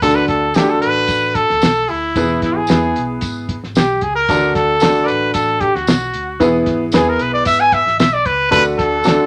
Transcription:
0.02 D2 D3 A3 D4 F#4 A4, kick, closed hi-hat, tambourine
0.15 B4
0.28 D2 A4, kick, closed hi-hat
0.54 D3 A3 D4 E4 G4 A4, snare, closed hi-hat, tambourine
0.63 F#4
0.70 A4
0.81 A1 B4, closed hi-hat
1.07 A1, kick, closed hi-hat, tambourine
1.35 A4, kick, closed hi-hat
1.50 D2, snare
1.62 B1, snare, closed hi-hat, tambourine
1.88 D2 E4, open hi-hat
2.16 E1 E3 B3 E4 G#4 B4, kick, closed hi-hat, tambourine
2.42 G#1 E4, kick, snare, closed hi-hat
2.56 G#4
2.67 E2 B3 E4 G#4 B4, snare, closed hi-hat, tambourine
2.96 B1, closed hi-hat
3.21 G#1, kick, closed hi-hat, tambourine
3.49 kick, closed hi-hat
3.63 G#1, snare
3.75 B1 G4, snare, closed hi-hat, tambourine
4.01 C#2 G#4, kick, closed hi-hat
4.15 A#4
4.29 D2 D3 A3 D4 F#4 A4, kick, closed hi-hat, tambourine
4.55 D2 A4, kick, snare, closed hi-hat
4.80 D3 A3 D4 F#4 A4, snare, closed hi-hat, tambourine
5.03 B4 D5
5.08 A1, closed hi-hat
5.34 A1 A4, kick, closed hi-hat, tambourine
5.60 G4, kick, closed hi-hat
5.74 D2 F#4, snare
5.87 B1, snare, closed hi-hat, tambourine
6.13 D2, closed hi-hat
6.40 E1 E3 B3 E4 G#4 B4, kick, closed hi-hat, tambourine
6.66 G#1, kick, snare, closed hi-hat
6.92 E2 B3 E4 G#4 B4, snare, closed hi-hat, tambourine
6.96 G#4
7.09 A#4
7.19 B1 B4, closed hi-hat
7.33 D5
7.45 G#1 E5, kick, closed hi-hat, tambourine
7.60 G#5
7.72 E5, kick, closed hi-hat
7.86 G#1, snare
7.99 B1 E5, snare, closed hi-hat, tambourine
8.13 D5
8.25 C#2 B4, kick, closed hi-hat
8.51 D2 D3 A3 D4 F#4 A4 B4, kick, closed hi-hat, tambourine
8.78 D2 A4, kick, snare, closed hi-hat
9.04 D3 A3 D4 F#4 A4, snare, closed hi-hat, tambourine

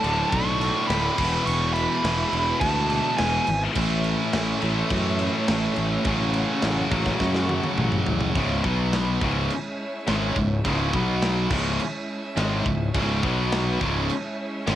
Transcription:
Already playing: D2 A2 D3 F#3 A3 D4 A4 D5 A5
0.03 D1 D2 A2 D3, crash
0.31 B1 C#6, kick, crash
0.61 crash
0.87 D1 D2 A2 B5, snare, crash
0.92 D3
1.17 E1 E2 B2 E3 G#3 B3 E4 B4 E5, kick, crash
1.46 E1 C#6, crash
1.73 B5, crash
2.03 E1 E2 B2 E3, snare, crash
2.32 E1, crash
2.60 D2 A5, kick, crash
2.89 E2 B2 E3, crash
3.18 E1 G#5, snare, crash
3.47 G#1, crash
3.75 A1 A2 E3 A3 C#4 C#5, kick, crash
4.04 crash
4.33 A1, snare, crash
4.62 A1 A2 E3 A3, crash
4.90 F#2, kick, crash
5.19 crash
5.48 A1 A2 E3 A3, snare, crash
5.76 A1, crash
6.05 A1 F#2 C#3 F#3 F#4 F#5, kick, crash
6.34 crash
6.62 A1, snare, crash
6.91 A1 F#2 C#3 F#3, kick, crash
7.06 kick, snare
7.20 F#2, kick, snare
7.34 snare
7.49 high tom
7.63 high tom
7.77 A1 F#2 C#3 F#3, mid tom
7.92 mid tom
8.06 A1, floor tom
8.21 floor tom
8.35 C#1 C#2 G#2 C#3 G#3 C#4 E4 C#5 E5, kick, crash
8.63 B1 B2 F#3 B3 F#4 B4 B5, kick
8.93 snare, crash
9.21 C#1 C#2 G#2 C#3 G#3 C#4 E4 C#5 E5, kick
9.50 crash
10.07 G#1 G#2 D#3 G#3, snare, crash
10.36 C#1 C#2 G#2, kick
10.64 C#1 C#2 G#2 C#3, kick, crash
10.93 B1 B2 F#3 B3 F#4 B4 B5, kick
11.22 snare, crash
11.50 C#1 C#2 G#2 C#3 G#3 C#4 E4 C#5 E5, kick, crash
11.80 crash
12.36 G#1 G#2 D#3 G#3, snare, crash
12.65 C#1 C#2 G#2, kick
12.94 C#1 C#2 G#2 C#3, kick, crash
13.22 B1 B2 F#3 B3 F#4 B4 B5, kick
13.52 snare, crash
13.80 C#1 C#2 G#2 C#3 G#3 C#4 E4 C#5 E5, kick
14.10 crash
14.66 G#1 G#2 D#3 G#3, snare, crash

